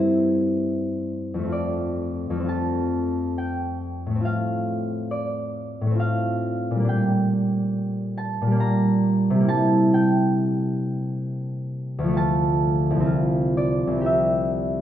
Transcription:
0.00 1.47 G2 soft
0.00 1.50 A#3 soft
0.00 1.42 C4 soft
0.00 1.54 E4 soft
0.00 3.68 C5 medium
0.00 1.56 E5 medium
1.34 2.29 F2 soft
1.39 2.34 A3 soft
1.43 2.38 C4 soft
1.48 2.43 F4 soft
1.52 4.27 D5 medium
2.30 4.18 F2 soft
2.35 4.09 A3 soft
2.39 4.14 C4 soft
2.44 4.20 F4 soft
2.49 6.39 A5 medium
3.38 4.86 G5 medium
4.06 5.80 A2 soft
4.10 5.85 A3 soft
4.15 5.89 C4 soft
4.21 5.94 F4 soft
4.25 5.98 F5 medium
5.11 9.01 D5 medium
5.81 6.82 A2 soft
5.86 6.85 A3 soft
5.90 6.87 C4 soft
5.95 6.89 F4 soft
6.00 6.92 F5 medium
6.71 8.40 A#2 medium
6.75 8.46 G3 soft
6.80 8.50 A#3 soft
6.84 8.55 D4 soft
6.89 9.93 G5 medium
8.18 8.91 A5 loud
8.42 9.43 A#2 medium
8.47 9.34 G3 soft
8.52 9.39 A#3 soft
8.56 9.50 D4 soft
8.60 12.22 A#5 medium
9.30 12.12 C3 medium
9.35 12.15 G3 soft
9.40 12.17 A#3 soft
9.44 12.19 E4 soft
9.49 10.25 A5 medium
9.94 12.21 G5 medium
11.98 13.04 D2 medium
12.04 12.94 F3 medium
12.08 14.05 A3 medium
12.13 13.04 F4 soft
12.13 14.10 A5 loud
12.90 13.86 C2 medium
12.96 14.03 F3 soft
13.00 13.95 C4 soft
13.05 14.08 F4 soft
13.57 14.40 D5 medium
13.87 14.81 C2 medium
13.92 14.81 C3 soft
13.97 14.81 C4 soft
14.01 14.81 G4 soft
14.06 14.81 E5 medium

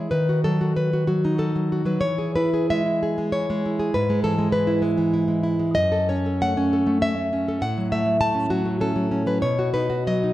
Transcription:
0.00 0.11 G#3 soft
0.00 0.11 E4 soft
0.00 0.12 G#4 soft
0.11 1.97 D#3 medium
0.11 0.42 B4 medium
0.29 0.60 F#4 soft
0.44 0.76 F#3 soft
0.44 0.75 A4 medium
0.61 0.92 F#4 soft
0.77 1.07 F#3 soft
0.77 1.06 B4 medium
0.93 1.06 F#4 soft
1.07 1.54 F#3 soft
1.07 1.37 F#4 medium
1.25 2.01 D#4 soft
1.38 1.71 F#4 soft
1.38 1.83 A4 medium
1.56 1.84 F#3 soft
1.72 2.02 F#4 soft
1.85 2.01 F#3 soft
1.85 2.01 B4 medium
2.01 3.90 E3 medium
2.01 2.33 C#5 medium
2.18 2.52 G#4 soft
2.36 2.85 E4 soft
2.36 2.68 B4 medium
2.54 3.01 G#4 soft
2.70 3.17 G#3 soft
2.70 3.31 E5 medium
2.86 3.32 E4 soft
3.03 3.78 G#4 soft
3.18 3.49 G#3 soft
3.32 3.64 E4 soft
3.32 3.90 C#5 medium
3.50 3.94 G#3 soft
3.66 3.94 E4 soft
3.79 3.94 G#4 soft
3.94 5.73 G#2 medium
3.94 4.22 B4 medium
4.10 4.37 G#3 soft
4.24 4.51 E3 soft
4.24 4.52 A4 medium
4.38 4.81 G#3 soft
4.52 4.96 E3 medium
4.52 4.81 B4 medium
4.67 5.12 E4 medium
4.82 5.27 G#3 soft
4.98 5.75 E3 soft
5.13 5.42 E4 soft
5.28 5.58 G#3 soft
5.43 5.75 E4 soft
5.59 5.75 G#3 soft
5.75 7.59 F#2 medium
5.75 6.07 D#5 medium
5.92 6.25 A4 medium
6.09 6.56 C#4 medium
6.09 6.41 C#5 medium
6.26 6.72 A4 soft
6.42 6.85 A3 medium
6.42 7.01 F#5 medium
6.57 7.00 C#4 medium
6.73 7.47 A4 medium
6.87 7.17 A3 medium
7.02 7.32 C#4 soft
7.02 7.60 E5 medium
7.18 7.61 A3 soft
7.33 7.63 C#4 medium
7.48 7.63 A4 medium
7.62 9.38 A2 medium
7.62 7.91 F#5 medium
7.78 8.04 F#3 soft
7.92 8.19 A3 soft
7.92 8.20 E5 medium
8.06 8.49 F#3 soft
8.21 8.50 A3 medium
8.21 8.50 A5 loud
8.35 8.65 C#4 medium
8.50 8.95 F#3 medium
8.50 8.80 F#4 medium
8.65 9.42 A3 medium
8.81 9.10 C#4 soft
8.81 9.25 A4 medium
8.96 9.25 F#3 soft
9.11 9.43 C#4 medium
9.26 9.42 F#3 soft
9.26 9.42 B4 medium
9.42 10.33 B2 medium
9.42 9.73 C#5 medium
9.59 9.88 F#4 medium
9.74 10.22 D#4 medium
9.74 10.05 B4 medium
9.90 10.33 F#4 soft
10.07 10.33 F#3 soft
10.07 10.33 D#5 medium
10.24 10.33 D#4 medium

